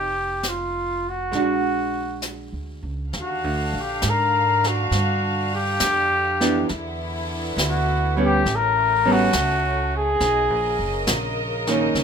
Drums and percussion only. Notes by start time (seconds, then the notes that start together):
0.43 snare, hi-hat pedal
1.33 brush sweep, snare
2.22 snare, hi-hat pedal
3.13 brush sweep, snare
4.02 snare, hi-hat pedal
4.64 snare
4.92 brush sweep, snare
5.80 snare, hi-hat pedal
6.41 snare
6.69 brush sweep, snare
7.58 snare, hi-hat pedal
8.46 brush sweep, snare
9.33 snare, hi-hat pedal
10.20 brush sweep, snare
11.07 snare, hi-hat pedal
11.67 snare
11.95 brush sweep, snare